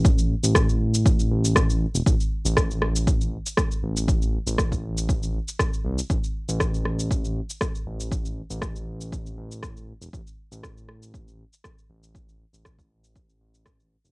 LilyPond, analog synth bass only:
\new Staff \with { instrumentName = "Analog synth bass" } { \clef bass \time 4/4 \key e \phrygian \tempo 4 = 119 a,,8 r16 a,,4.~ a,,16 a,,4 r16 e,,16 | a,,16 r8 a,,4.~ a,,16 r4 a,,8~ | a,,8 r16 a,,4.~ a,,16 r4 c,16 r16 | a,,16 r8 a,,4.~ a,,16 r4 a,,8~ |
a,,8 r16 a,,4.~ a,,16 a,,4 r16 e,,16 | a,,16 r8 a,,4.~ a,,16 r4 a,,8~ | a,,8 r16 a,,4.~ a,,16 a,,4 r16 e,,16 | }